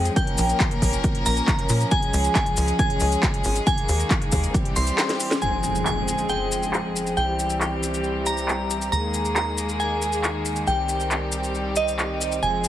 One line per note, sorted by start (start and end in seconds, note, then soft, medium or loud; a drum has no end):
0.00 3.63 F3 medium
0.00 0.15 G#3 medium
0.00 0.13 C4 medium
0.00 0.15 G#4 medium
0.05 closed hi-hat medium
0.05 maracas medium
0.16 1.90 A#3 medium
0.16 3.63 C#4 medium
0.16 1.90 A#4 medium
0.16 0.58 G5 medium
0.16 kick loud
0.16 closed hi-hat medium
0.16 maracas soft
0.27 closed hi-hat medium
0.38 0.53 A#1 loud
0.38 open hi-hat loud
0.38 maracas medium
0.49 closed hi-hat medium
0.49 maracas soft
0.60 kick loud
0.60 clap loud
0.60 closed hi-hat medium
0.60 maracas soft
0.71 closed hi-hat medium
0.82 0.97 A#1 medium
0.82 kick medium
0.82 open hi-hat loud
0.82 maracas medium
0.93 closed hi-hat medium
0.93 maracas soft
1.04 kick loud
1.04 closed hi-hat medium
1.04 maracas soft
1.15 closed hi-hat medium
1.26 1.41 A#1 medium
1.26 1.83 A#5 medium
1.26 open hi-hat loud
1.26 maracas loud
1.36 closed hi-hat medium
1.36 maracas medium
1.48 kick loud
1.48 clap loud
1.48 closed hi-hat medium
1.48 maracas soft
1.59 closed hi-hat medium
1.69 1.85 A#2 loud
1.69 open hi-hat loud
1.69 maracas medium
1.81 closed hi-hat medium
1.81 maracas soft
1.91 4.52 G#3 medium
1.91 4.52 G#4 medium
1.91 2.33 G#5 loud
1.91 kick loud
1.91 closed hi-hat medium
1.91 maracas soft
2.02 closed hi-hat medium
2.13 2.29 C#2 loud
2.13 open hi-hat loud
2.13 maracas medium
2.24 closed hi-hat medium
2.24 maracas soft
2.35 2.77 G#5 medium
2.35 kick loud
2.35 clap loud
2.35 closed hi-hat medium
2.35 maracas soft
2.46 closed hi-hat medium
2.57 2.72 C#2 medium
2.57 open hi-hat loud
2.57 maracas medium
2.68 closed hi-hat medium
2.68 maracas soft
2.79 3.58 G#5 medium
2.79 kick loud
2.79 closed hi-hat medium
2.79 maracas soft
2.90 closed hi-hat medium
3.00 3.16 C#2 medium
3.00 open hi-hat loud
3.00 maracas medium
3.12 closed hi-hat medium
3.12 maracas medium
3.23 kick loud
3.23 clap loud
3.23 closed hi-hat medium
3.23 maracas soft
3.34 closed hi-hat medium
3.44 3.60 G#1 loud
3.44 open hi-hat loud
3.44 maracas medium
3.56 closed hi-hat medium
3.56 maracas soft
3.67 4.54 D#3 medium
3.67 4.54 A#3 medium
3.67 4.08 G#5 medium
3.67 kick loud
3.67 closed hi-hat medium
3.67 maracas soft
3.78 closed hi-hat medium
3.89 4.04 D#2 loud
3.89 open hi-hat loud
3.89 maracas medium
4.00 closed hi-hat medium
4.00 maracas medium
4.10 kick loud
4.10 clap loud
4.10 closed hi-hat medium
4.10 maracas soft
4.22 closed hi-hat medium
4.32 4.48 D#2 medium
4.32 kick medium
4.32 open hi-hat loud
4.32 maracas medium
4.43 closed hi-hat medium
4.43 maracas soft
4.54 5.41 E3 medium
4.54 5.41 G3 medium
4.54 5.41 C4 medium
4.54 5.41 G4 medium
4.54 kick loud
4.54 closed hi-hat medium
4.54 maracas soft
4.65 closed hi-hat medium
4.76 4.91 C2 medium
4.76 5.33 C6 medium
4.76 open hi-hat loud
4.76 maracas medium
4.87 closed hi-hat medium
4.87 maracas soft
4.98 snare medium
4.98 clap loud
4.98 closed hi-hat medium
4.98 maracas soft
5.09 snare medium
5.09 closed hi-hat medium
5.20 open hi-hat loud
5.20 maracas medium
5.31 snare medium
5.31 closed hi-hat medium
5.31 maracas medium
5.42 7.15 F1 medium
5.42 7.15 F3 medium
5.42 7.15 G#3 medium
5.42 7.15 C4 medium
5.42 7.15 G#4 medium
5.42 5.84 G#5 medium
5.42 impact medium
5.42 maracas soft
5.63 maracas medium
5.75 maracas soft
5.86 6.27 G#5 medium
5.86 clap loud
5.86 maracas soft
6.08 maracas medium
6.18 maracas medium
6.29 7.08 G5 medium
6.29 maracas soft
6.52 maracas medium
6.63 maracas medium
6.73 clap loud
6.73 maracas soft
6.96 maracas medium
7.07 maracas soft
7.17 8.90 C2 medium
7.17 8.91 E3 medium
7.17 8.91 G3 medium
7.17 8.91 C4 medium
7.17 8.91 G4 medium
7.17 7.59 G5 medium
7.17 maracas soft
7.39 maracas medium
7.50 maracas soft
7.61 clap loud
7.61 maracas soft
7.83 maracas medium
7.94 maracas medium
8.04 maracas soft
8.26 8.84 A#5 medium
8.26 maracas medium
8.37 maracas medium
8.48 clap loud
8.48 maracas soft
8.71 maracas medium
8.82 maracas medium
8.92 10.65 D#2 medium
8.92 12.39 D#3 medium
8.92 10.66 G#3 medium
8.92 10.66 A#3 medium
8.92 10.66 G#4 medium
8.92 9.34 A#5 medium
8.92 maracas soft
9.14 maracas medium
9.25 maracas soft
9.36 9.78 A#5 medium
9.36 clap loud
9.36 maracas soft
9.58 maracas medium
9.69 maracas soft
9.80 10.59 G#5 medium
9.80 maracas soft
10.02 maracas medium
10.12 maracas medium
10.24 clap loud
10.24 maracas soft
10.45 maracas medium
10.56 maracas soft
10.67 12.41 C2 medium
10.67 12.41 G3 medium
10.67 12.68 C4 medium
10.67 12.41 G4 medium
10.67 11.09 G5 medium
10.67 maracas soft
10.89 maracas medium
11.00 maracas soft
11.11 clap loud
11.11 maracas soft
11.32 maracas medium
11.44 maracas soft
11.55 maracas soft
11.76 12.34 D#5 medium
11.76 maracas medium
11.88 maracas medium
11.99 clap loud
11.99 maracas soft
12.21 maracas medium
12.32 maracas medium
12.43 12.68 F1 medium
12.43 12.68 F3 medium
12.43 12.68 G#3 medium
12.43 12.68 G#4 medium
12.43 12.68 G#5 medium
12.43 maracas soft
12.64 maracas medium